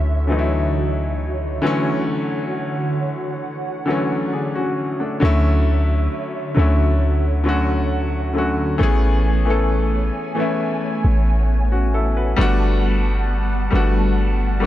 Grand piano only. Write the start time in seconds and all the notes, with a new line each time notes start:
Already playing: D3 E3 F#3 A3 C#4
0.27 D3 E3 F#3 A3
0.32 D#4
0.39 E4
1.62 D3 E3 F#3 A3
1.67 C#4
3.86 D3 E3 F#3 A3
3.90 C#4
4.33 D4 G#4
4.55 C#4 F#4
5.00 A3 D4
5.20 D3 F#3 A3 C#4
5.25 E4
6.54 D3 F#3 A3 C#4
6.59 E4
7.44 D3 F#3 A3 C#4
7.49 F#4
8.33 D3 F#3 A3 C#4
8.38 F#4
8.78 E3 A3 B3 C#4
8.83 G#4
9.45 E3 A3 B3 C#4
9.50 A4
10.35 E3 A3 B3 C#4
10.40 E4
11.72 C#4 F#4
11.94 E4 A4
12.17 F#4 B4
12.36 G3 A3 B3 D4
12.41 F#4
13.70 G3 A3 B3 D4
13.75 F#4
14.60 G3 A3 B3